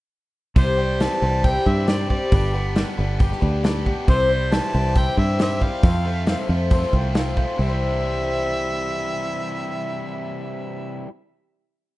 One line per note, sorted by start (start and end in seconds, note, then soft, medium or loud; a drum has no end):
0.56 1.08 C2 medium
0.56 0.78 C3 medium
0.56 0.78 E3 medium
0.56 0.79 G3 medium
0.56 0.78 C4 medium
0.56 0.77 G4 medium
0.56 0.77 C5 medium
0.56 1.04 C5 medium
0.56 kick loud
0.56 open hi-hat soft
0.78 0.99 G3 soft
0.78 1.00 C4 soft
0.78 1.01 G4 soft
0.78 1.00 C5 soft
1.00 2.10 E3 medium
1.00 1.22 G3 medium
1.00 1.23 C4 medium
1.00 1.22 G4 medium
1.00 1.21 C5 medium
1.00 1.46 A5 loud
1.00 snare loud
1.00 open hi-hat medium
1.22 1.56 C2 medium
1.22 1.44 G3 soft
1.22 1.45 C4 soft
1.22 1.45 G4 soft
1.22 1.45 C5 medium
1.44 1.67 C3 medium
1.44 1.67 E3 medium
1.44 1.67 G3 medium
1.44 1.67 C4 medium
1.44 1.66 G4 medium
1.44 1.65 C5 medium
1.44 1.69 G5 medium
1.44 kick loud
1.44 open hi-hat soft
1.66 2.18 G2 medium
1.66 1.87 G3 soft
1.66 1.88 C4 soft
1.66 1.88 G4 soft
1.66 1.89 C5 soft
1.66 1.90 E5 medium
1.66 kick medium
1.88 2.10 G3 medium
1.88 2.11 C4 medium
1.88 2.10 G4 medium
1.88 2.10 C5 medium
1.88 2.09 D5 medium
1.88 snare loud
1.88 open hi-hat soft
2.10 2.31 G3 soft
2.10 2.33 C4 soft
2.10 2.32 G4 soft
2.10 2.33 C5 medium
2.10 2.94 D5 medium
2.10 kick medium
2.32 2.83 G1 medium
2.32 3.42 G2 medium
2.32 2.54 G3 medium
2.32 2.55 D4 medium
2.32 2.54 G4 medium
2.32 2.53 B4 medium
2.32 kick loud
2.32 open hi-hat medium
2.54 2.96 B3 medium
2.54 2.75 D4 soft
2.54 2.76 G4 soft
2.54 2.76 B4 medium
2.75 2.98 G3 medium
2.75 2.98 D4 medium
2.75 2.98 G4 medium
2.75 2.96 B4 medium
2.75 snare loud
2.75 open hi-hat soft
2.97 3.33 G1 medium
2.97 3.84 B3 medium
2.97 3.19 D4 soft
2.97 3.19 G4 medium
2.97 3.20 B4 medium
3.19 3.42 G3 medium
3.19 3.41 D4 medium
3.19 3.40 G4 medium
3.19 3.39 B4 medium
3.19 kick loud
3.19 open hi-hat soft
3.32 snare soft
3.41 3.93 D2 medium
3.41 3.63 D4 soft
3.41 3.63 G4 soft
3.41 3.63 B4 medium
3.41 kick medium
3.63 3.85 G3 medium
3.63 3.86 D4 medium
3.63 3.85 G4 medium
3.63 3.84 B4 medium
3.63 snare loud
3.63 open hi-hat soft
3.85 4.08 B3 medium
3.85 4.08 D4 soft
3.85 4.08 G4 medium
3.85 4.08 B4 medium
3.85 kick medium
4.07 4.59 C2 medium
4.07 4.30 C3 medium
4.07 4.30 E3 medium
4.07 4.30 G3 medium
4.07 4.30 C4 medium
4.07 4.29 E4 medium
4.07 4.28 C5 medium
4.07 4.55 C5 loud
4.07 kick loud
4.07 open hi-hat soft
4.29 4.50 G3 soft
4.29 4.51 C4 soft
4.29 4.52 E4 soft
4.29 4.52 C5 soft
4.51 5.61 E3 medium
4.51 4.74 G3 medium
4.51 4.74 C4 medium
4.51 4.73 E4 medium
4.51 4.72 C5 medium
4.51 5.00 A5 loud
4.51 snare loud
4.51 open hi-hat soft
4.73 5.08 C2 medium
4.73 4.96 G3 soft
4.73 4.96 C4 soft
4.73 4.96 E4 medium
4.73 4.95 C5 medium
4.94 5.18 C3 medium
4.94 5.18 E3 medium
4.94 5.18 G3 medium
4.94 5.18 C4 medium
4.94 5.17 E4 medium
4.94 5.38 G4 medium
4.94 5.16 C5 medium
4.94 5.18 G5 medium
4.94 kick loud
4.94 open hi-hat soft
5.17 5.69 G2 medium
5.17 5.38 G3 soft
5.17 5.39 C4 soft
5.17 5.40 E4 soft
5.17 5.40 C5 medium
5.17 5.38 E5 medium
5.17 kick medium
5.39 5.61 G3 medium
5.39 5.61 C4 medium
5.39 5.61 E4 medium
5.39 5.83 G4 medium
5.39 5.60 C5 medium
5.39 5.65 E5 medium
5.39 snare loud
5.39 open hi-hat medium
5.61 5.83 G3 soft
5.61 5.83 C4 soft
5.61 5.84 E4 soft
5.61 5.83 C5 soft
5.61 6.50 F5 medium
5.61 kick medium
5.83 6.34 F2 medium
5.83 6.93 F2 medium
5.83 6.05 F3 medium
5.83 6.05 A3 medium
5.83 6.06 C4 medium
5.83 6.05 F4 medium
5.83 6.04 C5 medium
5.83 kick loud
5.83 open hi-hat medium
6.05 6.49 A3 medium
6.05 6.27 C4 soft
6.05 6.28 F4 soft
6.05 6.27 C5 soft
6.27 7.37 F3 medium
6.27 6.49 A3 medium
6.27 6.50 C4 medium
6.27 6.48 F4 medium
6.27 6.47 C5 medium
6.27 snare medium
6.27 open hi-hat soft
6.49 6.83 F2 medium
6.49 7.35 A3 medium
6.49 6.71 C4 soft
6.49 6.71 F4 soft
6.49 6.71 C5 medium
6.71 6.93 F3 medium
6.71 6.93 A3 medium
6.71 6.93 C4 medium
6.71 6.94 F4 medium
6.71 6.93 C5 medium
6.71 kick loud
6.71 open hi-hat soft
6.83 snare soft
6.93 7.44 C2 medium
6.93 7.15 C4 soft
6.93 7.16 F4 soft
6.93 7.15 C5 medium
6.93 kick medium
7.15 7.37 A3 medium
7.15 7.37 C4 medium
7.15 7.37 F4 medium
7.15 7.36 C5 medium
7.15 snare loud
7.15 open hi-hat soft
7.36 7.59 A3 medium
7.36 7.60 C4 soft
7.36 7.59 F4 soft
7.36 7.59 C5 medium
7.36 kick medium
7.56 10.99 C2 medium
7.56 11.06 C3 medium
7.56 11.09 E3 medium
7.56 11.10 C4 medium
7.61 11.12 G3 medium
7.61 11.14 C4 medium
7.61 11.11 E4 medium
7.61 11.01 E5 loud
7.66 11.16 E4 medium
7.66 11.19 C5 medium